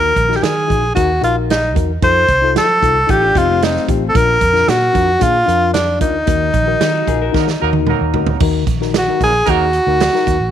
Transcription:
Already playing: D#2 D#3 D#4 F#4 A#4
0.16 A#1, kick, closed hi-hat
0.28 D#4 F#4 A#4, snare
0.36 G4
0.42 D#3 G#4, snare, closed hi-hat
0.67 A#1 D#4 F#4 G#4, kick, closed hi-hat
0.95 D#2 D#4 F#4 A#4, kick, closed hi-hat
1.21 A#1 D#4 F4 F#4 A#4, closed hi-hat
1.50 D#4, snare, closed hi-hat
1.74 E2 D#4 F#4 A#4, kick, closed hi-hat
2.02 F2 D#4 F4 A4 C5, kick, closed hi-hat
2.28 C2, kick, closed hi-hat
2.42 D#4 F4 A4
2.55 F3 A4, snare, closed hi-hat
2.81 C2 D#4 F4 A4, kick, closed hi-hat
3.07 A1 D#4 F4 G4 A4, kick, closed hi-hat
3.22 D4 F4
3.35 F1 C4 D#4 F4 G4, kick, closed hi-hat
3.49 A3 C4
3.62 D#4, snare, closed hi-hat
3.76 snare
3.87 A1 D#4 F4 G4, kick, closed hi-hat
4.09 A4
4.14 A#1 A#2 D4 F4 A#4, kick, closed hi-hat
4.41 F2, kick, closed hi-hat
4.53 D4 F4 A#4, snare
4.68 A#2 F#4, snare, closed hi-hat
4.93 F2 D4 F4 A#4, kick, closed hi-hat
5.20 A#2 D4 F4 G#4, kick, closed hi-hat
5.46 F2 D4 F4 A#4, closed hi-hat
5.74 D4, snare, closed hi-hat
6.00 D2 D4 D#4 F4 A#4, kick, closed hi-hat
6.26 D#2 D#3 D#4 F#4 A#4, kick, closed hi-hat
6.53 A#1, kick, closed hi-hat
6.66 D#4 F#4 A#4
6.81 D#3 D#4, snare, closed hi-hat
6.94 D#4 F#4
7.07 A#1 D#4 F4 F#4 G#4 A#4, kick, closed hi-hat
7.22 F#4 A#4
7.32 D#3 F#3 A#3 D#4 F#4 A#4, kick, snare
7.48 D#4, snare
7.60 D#2 F#3 A#3 D#4 F#4 A#4
7.73 high tom
7.87 F#3 A#3 D#4 A#4, mid tom
8.01 D#2
8.14 D2 D#4 F#4 A#4, floor tom
8.26 floor tom
8.40 D#2 D#3 D#4 F#4 A#4, kick, crash
8.67 A#1, kick, closed hi-hat
8.81 D#4 F#4 A#4, snare
8.94 F#4, snare, closed hi-hat
9.08 D#4 F#4 A#4
9.21 A#1 F#3 A#3 D#4 G#4 A#4, kick, closed hi-hat
9.46 D#2 F#3 A#3 D#4 F#4 G#4 A#4, kick, closed hi-hat
9.73 closed hi-hat
9.87 D2 D#4 F#4 A#4
10.00 snare, closed hi-hat
10.13 D#4 F#4 A#4, snare
10.27 D#2, kick, closed hi-hat
10.40 A1

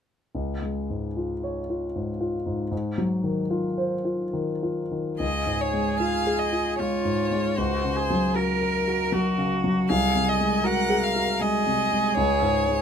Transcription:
0.35 C#2
0.62 G#3
0.90 G#2
1.17 F4
1.44 C#5
1.70 F4
1.95 G#2
2.21 F4
2.46 G#2
2.71 G#2
2.98 F#3
3.24 D#3
3.51 F4
3.78 C5
4.05 F4
4.33 D#3
4.63 F4
4.91 D#3
5.19 C#2 G#4 D#5
5.46 G#2
5.61 C#5
5.73 G#3
5.99 F4 F5
6.27 G#4
6.39 D#5
6.53 F4
6.79 G#3 F4 C#5
7.05 G#2
7.31 G#3
7.58 C#2 F#4 C5
7.85 C#3
7.96 G#4
8.10 F#3
8.35 F#4 A#4
8.61 A#4
8.88 F#4
9.12 F#3 F#4
9.38 C#3
9.64 F#3
9.89 C2 G#4 F5
10.15 C3
10.29 D#5
10.40 G#3
10.64 F#4 A#4 F#5
10.90 G#4
11.04 F5
11.16 F#4
11.40 G#3 G#4 D#5
11.67 C3
11.91 G#3
12.17 C#2 C#5
12.42 G#2
12.68 G#3

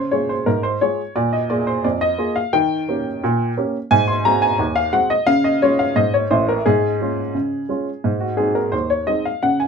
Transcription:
Already playing: C#3 C5
0.11 G#3 F4 G#4 C#5
0.29 C5
0.46 G#2 A#4
0.63 C5
0.81 G#3 F4 G#4 C#5
1.16 A#2 D5
1.33 D#5
1.50 A#3 F4 G#4 D5
1.67 C5
1.84 F2 D5
2.01 D#5
2.18 A#3 F4 G#4
2.36 F5
2.53 D#3 G5
2.89 A#3 C#4 G4
3.24 A#2
3.57 A#3 C#4 G4
3.91 G#2 G#5
4.08 C6
4.25 G#3 C4 F#4 A#5
4.42 G#5
4.59 D#2
4.76 F5
4.93 G#3 C4 F#4 F#5
5.10 D#5
5.27 C#3 F5
5.44 D#5
5.62 G#3 C#4 F4 C#5
5.79 F5
5.96 G#2 D#5
6.14 C#5
6.31 A1 A2 C5
6.49 A#4
6.66 G#2 G#4
7.01 G#3 C#4 F4
7.35 C#3
7.69 G#3 C#4 F4
8.04 G#2
8.20 F#4
8.37 G#3 C4 D#4 G#4
8.55 A#4
8.72 D#2 C5
8.90 C#5
9.07 G#3 C4 D#4 D#5
9.25 F5
9.43 C#3 F#5
9.60 G#5

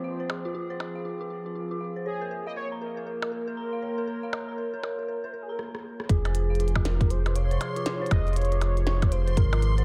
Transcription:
Already playing: F3 C4 F4 G#4 C5
0.04 F5
0.20 C5
0.29 G#4, percussion blips
0.45 F4
0.55 F4
0.70 C5
0.80 percussion blips
0.95 F5
1.05 F4
1.21 F4
1.30 F4
1.46 F4
1.55 F4
1.71 F4
1.81 F5
1.96 C5
2.06 A#3 G#4 C#5
2.21 A#4
2.31 A#4
2.47 D#5 F5
2.56 A#4 C#5
2.72 A#5
2.81 A#4
2.97 A#4
3.07 A#4
3.20 A#4 C6, percussion blips
3.32 A#4
3.43 C#5
3.48 A#4
3.57 A#5
3.73 F5
3.82 C#5
3.98 A#4
4.07 A#4
4.23 F5
4.33 A#4, percussion blips
4.48 A#5
4.58 A#4
4.74 A#4
4.83 A#4, percussion blips
4.99 A#4
5.08 A#4
5.24 A#4 C5
5.32 A#4
5.43 G#4
5.49 A#4 A#5
5.59 cross-stick
5.75 cross-stick
6.00 cross-stick
6.09 F1 F3 F4 G#4 C6, kick, closed hi-hat
6.25 C5, closed hi-hat, percussion blips
6.34 F4 G#4, closed hi-hat
6.50 F5
6.55 closed hi-hat
6.60 F4, closed hi-hat
6.66 C3, closed hi-hat
6.75 F4, kick, percussion blips
6.85 F4 A#4, snare, closed hi-hat
7.01 F4, kick, closed hi-hat
7.10 F4 C5, closed hi-hat
7.26 F4, closed hi-hat, percussion blips
7.35 C#5 F5, closed hi-hat
7.51 C5, closed hi-hat
7.61 G#4, closed hi-hat, percussion blips
7.76 F4, closed hi-hat
7.86 F4, snare, closed hi-hat
8.01 C5
8.06 closed hi-hat
8.11 F1 F4 D#5, kick, closed hi-hat, percussion blips
8.27 F5, closed hi-hat
8.33 F4 C#5, closed hi-hat
8.36 closed hi-hat
8.42 closed hi-hat
8.45 closed hi-hat
8.52 F4, closed hi-hat
8.61 F4, closed hi-hat, percussion blips
8.77 F4, closed hi-hat
8.87 F4, snare
9.02 F4, kick, closed hi-hat, percussion blips
9.12 C5 F5, closed hi-hat
9.27 C5, closed hi-hat
9.37 G#1 G#4 A#4, kick, closed hi-hat
9.53 F4, closed hi-hat, percussion blips
9.62 F4, closed hi-hat
9.78 C5, closed hi-hat

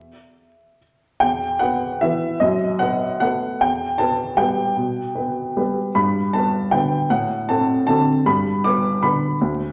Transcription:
Already playing: E5
1.20 E2 G5
1.59 B3 B4 F#5
2.01 E3 B3 B4 E5
2.40 F#2 D#5
2.79 B3 B4 F#5
3.20 A3 B3 B4 F#5
3.61 E2 G5
3.98 B3 B4 A5
4.37 G3 B3 B4 G5
4.76 B2
5.15 B3 B4
5.56 G3 B3 B4
5.95 G2 B5
6.33 B3 B4 A5
6.71 D3 B3 B4 G5
7.10 A2 F#5
7.49 C4 A4 A5
7.87 D3 C4 A4 A5
8.26 G2 B5
8.64 B3 B4 D6
9.03 D3 B3 B4 B5
9.41 D2

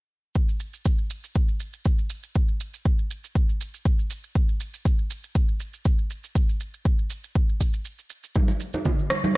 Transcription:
0.35 kick, shaker
0.49 shaker
0.60 shaker
0.73 shaker
0.85 kick, shaker
0.98 shaker
1.10 shaker
1.24 shaker
1.35 kick, shaker
1.48 shaker
1.60 shaker
1.73 shaker
1.85 kick, shaker
1.99 shaker
2.10 shaker
2.23 shaker
2.35 kick, shaker
2.48 shaker
2.60 shaker
2.74 shaker
2.85 kick, shaker
2.99 shaker
3.11 shaker
3.24 shaker
3.35 kick, shaker
3.49 shaker
3.61 shaker
3.74 shaker
3.85 kick, shaker
3.99 shaker
4.10 shaker
4.24 shaker
4.35 kick, shaker
4.49 shaker
4.60 shaker
4.74 shaker
4.85 kick, shaker
4.99 shaker
5.10 shaker
5.24 shaker
5.35 kick, shaker
5.48 shaker
5.60 shaker
5.73 shaker
5.85 kick, shaker
5.99 shaker
6.10 shaker
6.24 shaker
6.35 kick, shaker
6.49 shaker
6.60 shaker
6.74 shaker
6.85 kick, shaker
6.99 shaker
7.10 shaker
7.24 shaker
7.35 kick, shaker
7.49 shaker
7.60 kick, shaker
7.74 shaker
7.85 shaker
7.98 shaker
8.10 shaker
8.23 shaker
8.35 kick, high conga, shaker
8.48 muted conga, shaker
8.60 shaker
8.74 muted conga, high conga, shaker
8.85 kick, low conga, shaker
8.99 shaker
9.10 cross-stick, muted conga, shaker
9.24 high conga, shaker

